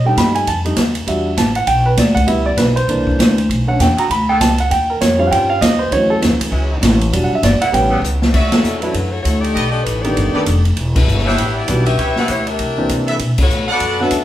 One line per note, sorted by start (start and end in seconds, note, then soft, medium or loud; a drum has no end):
0.00 0.16 B2 medium
0.05 0.45 G3 medium
0.05 0.45 A3 soft
0.05 0.45 D#4 medium
0.05 0.17 G5 medium
0.17 0.46 G2 medium
0.17 0.35 B5 medium
0.17 kick soft
0.17 snare medium
0.17 hi-hat pedal medium
0.17 ride medium
0.35 0.46 G#5 medium
0.35 ride medium
0.47 0.76 F2 medium
0.47 0.58 A5 medium
0.47 kick soft
0.47 ride medium
0.65 0.75 G3 soft
0.65 0.76 A3 soft
0.65 0.76 D#4 medium
0.65 ride soft
0.76 1.06 D#2 loud
0.76 kick soft
0.76 snare medium
0.76 hi-hat pedal medium
0.76 ride medium
0.95 ride medium
1.07 1.36 E2 medium
1.07 1.29 G3 medium
1.07 1.29 D4 soft
1.07 1.30 F#4 medium
1.07 1.36 E5 medium
1.07 kick soft
1.07 ride medium
1.37 1.66 A1 medium
1.37 1.55 A5 medium
1.37 kick soft
1.37 snare medium
1.37 hi-hat pedal medium
1.37 ride medium
1.55 1.67 F#5 medium
1.55 ride medium
1.67 1.96 B1 medium
1.67 1.85 G5 medium
1.67 kick soft
1.67 ride medium
1.86 1.97 B4 medium
1.97 2.27 D2 loud
1.97 2.16 D5 medium
1.97 kick soft
1.97 snare medium
1.97 hi-hat pedal medium
1.97 ride medium
2.15 2.27 F#5 medium
2.15 kick medium
2.15 ride medium
2.27 2.57 C#2 medium
2.27 2.49 G3 soft
2.27 2.49 B3 soft
2.27 2.50 E4 medium
2.27 2.45 E5 medium
2.27 ride medium
2.46 2.57 D5 medium
2.57 2.87 B1 loud
2.57 2.75 B4 medium
2.57 kick soft
2.57 snare medium
2.57 hi-hat pedal soft
2.57 ride medium
2.76 3.45 C5 medium
2.76 ride medium
2.88 3.17 C2 medium
2.88 3.35 E3 medium
2.88 3.35 A#3 soft
2.88 3.35 D4 medium
2.88 kick soft
2.88 ride medium
3.07 kick medium
3.19 3.48 D2 loud
3.19 kick soft
3.19 snare medium
3.19 hi-hat pedal medium
3.19 ride medium
3.38 ride medium
3.49 3.78 B1 medium
3.49 kick soft
3.49 ride medium
3.67 3.85 D3 soft
3.67 3.86 A3 soft
3.67 3.86 C#4 medium
3.67 3.79 F#5 medium
3.79 3.96 E2 loud
3.79 3.98 G5 medium
3.79 kick soft
3.79 snare medium
3.79 hi-hat pedal medium
3.79 ride medium
3.96 4.05 D3 loud
3.96 4.05 A3 loud
3.96 4.05 B3 loud
3.96 4.05 F#4 loud
3.96 4.10 A#5 medium
3.96 muted upright bass stroke soft
3.96 ride medium
4.10 4.39 D2 medium
4.10 4.28 B5 medium
4.10 kick soft
4.10 ride medium
4.29 4.37 D3 loud
4.29 4.37 A3 loud
4.29 4.37 B3 medium
4.29 4.36 A4 loud
4.29 4.40 G5 medium
4.41 4.69 C#2 loud
4.41 4.58 A5 medium
4.41 kick soft
4.41 snare medium
4.41 hi-hat pedal medium
4.41 ride medium
4.58 4.71 F#5 medium
4.58 ride medium
4.71 4.99 D#2 medium
4.71 4.88 G5 medium
4.71 kick soft
4.71 ride medium
4.90 5.00 A#4 medium
5.01 5.30 F2 medium
5.01 5.18 C#5 medium
5.01 kick soft
5.01 snare medium
5.01 hi-hat pedal medium
5.01 ride medium
5.18 5.58 F3 medium
5.18 5.59 G3 medium
5.18 5.59 C#4 medium
5.18 5.30 F5 medium
5.27 5.29 F#5 medium
5.31 5.60 G2 medium
5.31 5.76 D#3 medium
5.31 5.76 G3 medium
5.31 5.76 C#4 medium
5.31 5.76 F4 medium
5.31 5.49 G5 medium
5.31 kick soft
5.31 ride medium
5.50 5.61 F5 loud
5.61 5.90 D#2 loud
5.61 5.79 D#5 medium
5.61 kick soft
5.61 snare medium
5.61 hi-hat pedal medium
5.61 ride medium
5.79 5.90 C5 medium
5.91 6.21 D2 medium
5.91 7.08 E3 soft
5.91 7.08 F#3 soft
5.91 7.09 C#4 medium
5.91 6.09 C#5 medium
5.91 kick soft
5.91 ride medium
6.10 6.17 A4 medium
6.22 6.30 E2 loud
6.22 kick soft
6.22 snare medium
6.22 hi-hat pedal medium
6.22 ride medium
6.30 6.39 D2 medium
6.40 6.50 C#2 medium
6.40 ride medium
6.49 6.81 C#2 loud
6.49 6.96 C#3 medium
6.49 6.95 F#3 loud
6.49 6.96 C#4 loud
6.49 6.96 E4 loud
6.49 kick soft
6.82 7.11 A1 loud
6.82 kick soft
6.82 snare medium
6.82 hi-hat pedal medium
6.82 ride medium
7.01 ride medium
7.13 7.29 E1 medium
7.13 7.34 F#3 soft
7.13 7.34 G3 soft
7.13 7.35 D4 medium
7.13 kick soft
7.13 ride medium
7.24 7.33 F#5 medium
7.30 muted upright bass stroke soft
7.35 7.43 E5 medium
7.43 7.59 G1 loud
7.43 7.61 D5 medium
7.43 kick soft
7.43 snare medium
7.43 hi-hat pedal medium
7.43 ride medium
7.59 7.68 C#3 loud
7.59 7.68 G3 loud
7.59 7.68 A3 medium
7.59 7.68 E4 loud
7.59 7.73 F#5 loud
7.59 muted upright bass stroke soft
7.59 ride medium
7.72 8.01 A1 loud
7.72 7.94 G3 medium
7.72 7.95 B3 medium
7.72 7.95 C#4 medium
7.72 8.19 G5 medium
7.72 kick soft
7.72 ride medium
7.90 7.99 C#3 loud
7.90 7.99 G3 loud
7.90 7.99 A3 loud
7.90 7.98 B3 loud
8.02 8.32 C#2 loud
8.02 hi-hat pedal medium
8.22 snare medium
8.33 8.63 D2 medium
8.33 8.78 F#4 medium
8.33 8.78 C#5 medium
8.33 8.78 D5 medium
8.33 8.78 E5 loud
8.33 kick medium
8.33 crash medium
8.51 8.79 F#3 medium
8.51 8.79 C#4 medium
8.51 8.80 E4 medium
8.51 8.80 A4 medium
8.51 snare medium
8.51 ride medium
8.64 8.93 E2 medium
8.64 hi-hat pedal medium
8.81 8.93 F#3 medium
8.81 9.11 A3 medium
8.81 8.93 A3 medium
8.81 8.93 C#4 medium
8.81 8.93 D4 medium
8.81 9.11 E4 medium
8.81 8.93 E4 medium
8.81 9.10 F#4 medium
8.81 9.12 B4 medium
8.81 ride medium
8.94 9.23 F#2 medium
8.94 kick soft
8.94 ride medium
9.12 9.21 A3 medium
9.12 9.22 E4 medium
9.12 9.21 F#4 medium
9.12 9.22 C#5 medium
9.23 9.54 D2 loud
9.23 9.40 A3 medium
9.23 9.41 E4 medium
9.23 9.41 F#4 medium
9.23 9.41 C#5 medium
9.23 kick soft
9.23 hi-hat pedal medium
9.23 ride medium
9.41 9.70 A3 medium
9.41 9.72 D#4 medium
9.41 9.70 G4 medium
9.41 9.72 D5 loud
9.41 ride soft
9.55 9.85 B1 medium
9.55 9.67 G4 medium
9.55 9.67 A4 medium
9.55 9.67 B4 medium
9.55 9.67 D#5 loud
9.55 kick soft
9.55 ride medium
9.71 9.82 A3 medium
9.71 9.83 D4 medium
9.71 9.82 G4 medium
9.71 9.83 D#5 loud
9.83 10.15 A1 medium
9.83 10.02 A3 medium
9.83 10.01 D#4 medium
9.83 10.01 G4 medium
9.83 10.02 B4 loud
9.83 kick soft
9.83 hi-hat pedal medium
9.83 ride medium
10.02 10.32 D#3 medium
10.02 10.64 A3 medium
10.02 10.32 A3 medium
10.02 10.33 B3 medium
10.02 10.33 D4 medium
10.02 10.63 D#4 medium
10.02 10.64 G4 medium
10.02 10.33 G4 medium
10.02 10.64 D5 medium
10.02 ride medium
10.16 10.33 G1 medium
10.16 kick soft
10.16 ride medium
10.34 10.45 D#3 medium
10.34 10.45 A3 medium
10.34 10.45 B3 medium
10.34 10.45 D4 medium
10.34 10.42 G4 medium
10.34 10.42 A4 medium
10.34 10.45 A4 medium
10.34 10.42 B4 medium
10.34 10.42 D5 medium
10.34 muted upright bass stroke soft
10.46 10.76 F1 loud
10.46 kick soft
10.46 hi-hat pedal medium
10.46 ride medium
10.65 ride medium
10.77 11.06 E1 medium
10.77 kick soft
10.77 ride medium
10.95 11.23 G3 medium
10.95 11.23 D4 medium
10.95 11.23 E4 medium
10.95 11.23 B4 medium
10.95 kick medium
10.95 crash medium
11.06 11.36 G1 medium
11.06 hi-hat pedal medium
11.18 snare soft
11.25 11.54 B3 medium
11.25 11.65 D4 medium
11.25 11.54 E4 medium
11.25 11.65 G4 loud
11.25 11.54 G4 medium
11.25 11.65 B4 medium
11.25 11.54 C#5 medium
11.25 11.65 E5 loud
11.25 snare soft
11.38 11.67 A1 medium
11.38 kick soft
11.38 ride medium
11.57 11.87 B3 medium
11.57 11.87 E4 medium
11.57 11.85 G4 medium
11.57 11.86 D5 loud
11.68 11.97 B1 loud
11.68 11.84 E3 medium
11.68 11.84 G3 medium
11.68 11.85 B3 medium
11.68 11.85 D4 medium
11.68 11.85 F#4 medium
11.68 kick soft
11.68 hi-hat pedal medium
11.68 ride medium
11.86 12.14 C#4 medium
11.86 12.14 G4 loud
11.86 12.14 B4 medium
11.86 12.14 E5 medium
11.86 ride soft
11.97 12.15 C#2 medium
11.97 12.43 G4 medium
11.97 12.43 B4 medium
11.97 12.43 C#5 medium
11.97 12.43 E5 medium
11.97 kick soft
11.97 ride medium
12.16 12.29 D4 medium
12.16 12.28 G4 medium
12.16 12.29 B4 medium
12.16 12.29 F#5 loud
12.16 muted upright bass stroke soft
12.16 snare soft
12.28 12.58 D2 medium
12.28 12.46 B3 medium
12.28 12.46 E4 medium
12.28 12.46 G4 medium
12.28 12.46 C#5 loud
12.28 kick soft
12.28 hi-hat pedal medium
12.28 ride medium
12.47 13.08 D4 medium
12.47 13.08 G4 medium
12.47 13.08 A#4 medium
12.47 13.08 E5 loud
12.47 ride soft
12.59 12.88 C2 medium
12.59 kick soft
12.59 ride medium
12.77 13.17 E3 medium
12.77 13.17 A#3 medium
12.77 13.18 C4 medium
12.77 13.18 D4 medium
12.77 13.18 G4 medium
12.89 13.19 C3 medium
12.89 kick soft
12.89 hi-hat pedal medium
12.89 ride medium
13.07 13.15 A4 medium
13.07 13.15 B4 medium
13.07 13.15 D5 medium
13.07 13.15 E5 medium
13.07 ride soft
13.19 13.37 B2 medium
13.19 kick soft
13.19 ride medium
13.38 13.68 B3 medium
13.38 kick medium
13.38 crash medium
13.42 13.69 F#4 medium
13.42 13.69 A4 medium
13.42 13.69 C#5 medium
13.49 13.66 A2 medium
13.49 hi-hat pedal soft
13.67 14.08 A4 medium
13.67 14.08 B4 medium
13.67 14.08 D5 medium
13.67 14.08 F#5 loud
13.67 muted upright bass stroke soft
13.72 13.98 B3 medium
13.72 13.98 F#4 medium
13.72 13.99 A4 medium
13.72 13.99 D5 medium
13.80 14.10 F#2 medium
13.80 kick soft
13.80 ride medium
13.99 14.10 D3 medium
13.99 14.10 A3 medium
13.99 14.10 B3 medium
13.99 14.11 C#4 medium
13.99 14.24 D4 medium
13.99 14.11 F#4 medium
13.99 14.24 A4 medium
13.99 14.24 B4 medium
13.99 14.24 E5 medium
14.11 14.24 E2 loud
14.11 kick soft
14.11 hi-hat pedal medium
14.11 ride medium